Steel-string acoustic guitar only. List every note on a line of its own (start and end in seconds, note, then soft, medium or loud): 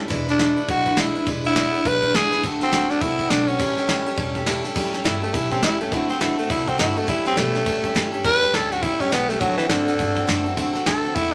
0.01 0.09 G3 soft
0.08 0.27 E3 medium
0.08 0.27 G#3 medium
0.08 0.28 D4 medium
0.08 0.27 E4 loud
0.08 0.25 B4 medium
0.26 0.39 D4 medium
0.26 0.40 E4 medium
0.26 0.39 B4 medium
0.39 0.57 E3 medium
0.39 0.57 G#3 medium
0.39 0.58 D4 medium
0.39 0.57 E4 medium
0.39 0.55 B4 medium
0.56 0.69 D4 soft
0.56 0.69 E4 soft
0.56 0.68 B4 medium
0.69 0.86 G#3 medium
0.69 0.87 D4 medium
0.69 0.86 E4 medium
0.69 0.84 B4 medium
0.86 0.96 D4 soft
0.86 0.97 E4 medium
0.86 0.98 B4 medium
0.96 1.15 E3 medium
0.96 1.15 G#3 medium
0.96 1.15 D4 medium
0.96 1.15 E4 medium
0.96 1.14 B4 medium
1.15 1.26 D4 soft
1.15 1.27 E4 soft
1.15 1.27 B4 soft
1.26 1.44 E3 medium
1.26 1.45 G#3 medium
1.26 1.45 D4 medium
1.26 1.44 E4 medium
1.26 1.43 B4 medium
1.44 1.56 D4 soft
1.44 1.56 E4 medium
1.44 1.56 B4 medium
1.56 1.74 E3 medium
1.56 1.74 G#3 medium
1.56 1.74 D4 medium
1.56 1.74 E4 medium
1.56 1.72 B4 medium
1.73 1.85 D4 soft
1.73 1.86 E4 soft
1.73 1.85 B4 medium
1.85 2.02 G#3 medium
1.85 2.03 D4 medium
1.85 2.02 E4 medium
1.85 2.01 B4 medium
2.02 2.14 D4 soft
2.02 2.14 E4 medium
2.02 2.14 B4 medium
2.14 2.32 E3 medium
2.14 2.32 G#3 medium
2.14 2.32 D4 medium
2.14 2.32 E4 medium
2.14 2.30 B4 medium
2.31 2.44 D4 medium
2.31 2.44 E4 soft
2.31 2.43 B4 medium
2.43 2.61 D3 medium
2.43 2.61 A3 medium
2.43 2.62 C4 medium
2.43 2.61 F#4 medium
2.43 2.59 A4 medium
2.60 2.71 C4 soft
2.60 2.72 F#4 medium
2.60 2.72 A4 medium
2.72 2.89 D3 medium
2.72 2.90 A3 medium
2.72 2.90 C4 medium
2.72 2.90 F#4 medium
2.72 2.88 A4 medium
2.90 3.00 C4 soft
2.90 3.01 F#4 soft
2.90 3.01 A4 medium
3.00 3.18 A3 medium
3.00 3.19 C4 medium
3.00 3.18 F#4 medium
3.00 3.17 A4 medium
3.18 3.30 C4 soft
3.18 3.30 F#4 medium
3.18 3.30 A4 medium
3.30 3.48 D3 medium
3.30 3.48 A3 medium
3.30 3.48 C4 medium
3.30 3.48 F#4 medium
3.30 3.46 A4 medium
3.47 3.60 C4 soft
3.47 3.60 F#4 medium
3.47 3.59 A4 medium
3.59 3.77 A2 medium
3.59 3.77 E3 medium
3.59 3.77 G3 medium
3.59 3.77 C#4 medium
3.59 3.76 G4 medium
3.59 3.75 A4 medium
3.76 3.88 G3 soft
3.76 3.88 C#4 soft
3.76 3.88 G4 medium
3.76 3.88 A4 medium
3.88 4.06 A2 medium
3.88 4.06 E3 medium
3.88 4.06 G3 medium
3.88 4.07 C#4 medium
3.88 4.05 G4 medium
3.88 4.04 A4 medium
4.05 4.15 G3 soft
4.05 4.16 C#4 medium
4.05 4.17 G4 medium
4.05 4.17 A4 medium
4.16 4.34 G3 medium
4.16 4.35 C#4 medium
4.16 4.34 G4 medium
4.16 4.33 A4 medium
4.35 4.46 G3 medium
4.35 4.46 C#4 medium
4.35 4.47 G4 medium
4.35 4.46 A4 medium
4.46 4.64 A2 medium
4.46 4.64 E3 medium
4.46 4.64 G3 medium
4.46 4.64 C#4 medium
4.46 4.63 G4 medium
4.46 4.61 A4 loud
4.63 4.75 G3 soft
4.63 4.75 C#4 soft
4.63 4.75 G4 medium
4.63 4.75 A4 medium
4.75 4.93 A2 medium
4.75 4.93 E3 medium
4.75 4.93 G3 medium
4.75 4.94 C#4 medium
4.75 4.93 G4 loud
4.75 4.91 A4 medium
4.93 5.04 G3 medium
4.93 5.04 C#4 medium
4.93 5.04 G4 medium
4.93 5.05 A4 medium
5.04 5.22 A2 medium
5.04 5.22 E3 medium
5.04 5.22 G3 medium
5.04 5.22 C#4 medium
5.04 5.21 G4 medium
5.04 5.20 A4 medium
5.22 5.32 G3 soft
5.22 5.33 C#4 soft
5.22 5.34 G4 soft
5.22 5.34 A4 medium
5.33 5.51 G3 medium
5.33 5.51 C#4 medium
5.33 5.51 G4 medium
5.33 5.50 A4 medium
5.51 5.62 G3 soft
5.51 5.63 C#4 medium
5.51 5.63 G4 medium
5.51 5.63 A4 medium
5.62 5.80 A2 medium
5.62 5.81 E3 medium
5.62 5.81 G3 medium
5.62 5.81 C#4 medium
5.62 5.81 G4 medium
5.62 5.79 A4 medium
5.81 5.93 G3 soft
5.81 5.93 C#4 medium
5.81 5.93 G4 medium
5.81 5.92 A4 medium
5.92 6.10 D3 medium
5.92 6.10 A3 medium
5.92 6.10 C4 medium
5.92 6.10 F#4 medium
5.92 6.08 A4 medium
6.09 6.20 C4 soft
6.09 6.21 F#4 medium
6.09 6.21 A4 medium
6.20 6.38 D3 medium
6.20 6.39 A3 medium
6.20 6.39 C4 medium
6.20 6.39 F#4 medium
6.20 6.37 A4 medium
6.38 6.48 C4 soft
6.38 6.50 F#4 soft
6.38 6.50 A4 medium
6.49 6.67 A3 medium
6.49 6.67 C4 medium
6.49 6.66 F#4 medium
6.49 6.65 A4 medium
6.66 6.78 C4 medium
6.66 6.78 F#4 medium
6.66 6.78 A4 medium
6.78 6.96 D3 medium
6.78 6.96 A3 medium
6.78 6.97 C4 medium
6.78 6.96 F#4 medium
6.78 6.94 A4 medium
6.96 7.08 C4 medium
6.96 7.08 F#4 soft
6.96 7.08 A4 medium
7.07 7.25 A2 medium
7.07 7.25 E3 medium
7.07 7.26 G3 medium
7.07 7.26 C#4 medium
7.07 7.25 G4 medium
7.07 7.23 A4 medium
7.25 7.36 G3 soft
7.25 7.37 C#4 medium
7.25 7.37 G4 medium
7.25 7.37 A4 medium
7.36 7.54 A2 medium
7.36 7.55 E3 medium
7.36 7.55 G3 medium
7.36 7.54 C#4 medium
7.36 7.54 G4 medium
7.36 7.52 A4 medium
7.53 7.64 G3 soft
7.53 7.65 C#4 soft
7.53 7.66 G4 soft
7.53 7.66 A4 medium
7.65 7.83 G3 medium
7.65 7.84 C#4 medium
7.65 7.82 G4 medium
7.65 7.81 A4 medium
7.82 7.94 G3 medium
7.82 7.95 C#4 medium
7.82 7.95 G4 medium
7.82 7.95 A4 medium
7.94 8.13 A2 medium
7.94 8.13 E3 medium
7.94 8.13 G3 medium
7.94 8.13 C#4 medium
7.94 8.11 G4 medium
7.94 8.11 A4 loud
8.12 8.24 G3 soft
8.12 8.24 C#4 medium
8.12 8.24 G4 medium
8.12 8.24 A4 medium
8.23 8.42 A2 medium
8.23 8.42 E3 medium
8.23 8.42 G3 medium
8.23 8.42 C#4 medium
8.23 8.42 G4 medium
8.23 8.40 A4 medium
8.41 8.53 G3 soft
8.41 8.54 C#4 medium
8.41 8.54 G4 medium
8.41 8.53 A4 medium
8.53 8.71 A2 medium
8.53 8.71 E3 medium
8.53 8.71 G3 medium
8.53 8.71 C#4 medium
8.53 8.71 G4 medium
8.53 8.70 A4 medium
8.71 8.81 G3 soft
8.71 8.83 C#4 soft
8.71 8.83 G4 soft
8.71 8.83 A4 medium
8.83 9.00 G3 medium
8.83 9.01 C#4 medium
8.83 9.00 G4 medium
8.83 8.99 A4 medium
9.00 9.10 G3 medium
9.00 9.11 C#4 soft
9.00 9.11 G4 medium
9.00 9.12 A4 medium
9.10 9.29 A2 medium
9.10 9.29 E3 medium
9.10 9.29 G3 medium
9.10 9.30 C#4 medium
9.10 9.29 G4 medium
9.10 9.28 A4 medium
9.29 9.41 G3 soft
9.29 9.41 C#4 soft
9.29 9.41 G4 medium
9.29 9.41 A4 medium
9.40 9.58 D3 medium
9.40 9.59 A3 medium
9.40 9.59 C4 medium
9.40 9.59 F#4 medium
9.40 9.57 A4 medium
9.59 9.69 C4 soft
9.59 9.70 F#4 medium
9.59 9.70 A4 medium
9.70 9.87 D3 medium
9.70 9.88 A3 medium
9.70 9.88 C4 medium
9.70 9.87 F#4 medium
9.70 9.85 A4 medium
9.86 9.98 C4 soft
9.86 9.99 F#4 soft
9.86 9.98 A4 medium
9.98 10.16 A3 medium
9.98 10.17 C4 medium
9.98 10.16 F#4 medium
9.98 10.14 A4 medium
10.15 10.26 C4 medium
10.15 10.28 F#4 medium
10.15 10.28 A4 medium
10.27 10.45 D3 medium
10.27 10.46 A3 medium
10.27 10.46 C4 medium
10.27 10.45 F#4 medium
10.27 10.43 A4 medium
10.44 10.57 C4 medium
10.44 10.58 F#4 medium
10.44 10.57 A4 medium
10.57 10.75 D3 medium
10.57 10.75 A3 medium
10.57 10.75 C4 medium
10.57 10.74 F#4 loud
10.57 10.72 A4 loud
10.73 10.86 C4 medium
10.73 10.87 F#4 medium
10.73 10.86 A4 medium
10.86 11.04 D3 medium
10.86 11.04 A3 medium
10.86 11.04 C4 medium
10.86 11.04 F#4 medium
10.86 11.02 A4 medium
11.03 11.15 C4 soft
11.03 11.16 F#4 soft
11.03 11.15 A4 medium
11.15 11.33 A3 medium
11.15 11.34 C4 medium
11.15 11.34 F#4 medium
11.15 11.32 A4 medium